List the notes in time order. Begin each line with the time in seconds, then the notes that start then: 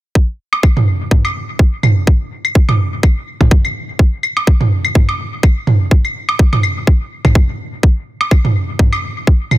0.15 kick
0.53 low woodblock
0.63 kick, claves
0.77 mid tom
1.11 kick, mid tom
1.25 claves, low woodblock
1.59 kick
1.83 mid tom, claves
2.07 kick
2.45 claves
2.55 kick
2.69 mid tom, low woodblock
3.03 kick, claves
3.41 kick, mid tom
3.51 kick
3.65 claves
3.99 kick
4.23 claves
4.37 low woodblock
4.47 kick
4.61 mid tom
4.85 claves
4.95 kick, mid tom
5.09 low woodblock
5.43 kick, claves
5.67 mid tom
5.91 kick
6.05 claves
6.29 low woodblock
6.39 kick
6.53 mid tom, low woodblock
6.63 claves
6.87 kick
7.25 kick, mid tom, claves
7.35 kick
7.83 kick
8.21 low woodblock
8.31 kick, claves
8.45 mid tom
8.79 kick, mid tom
8.93 claves, low woodblock
9.27 kick
9.51 mid tom, claves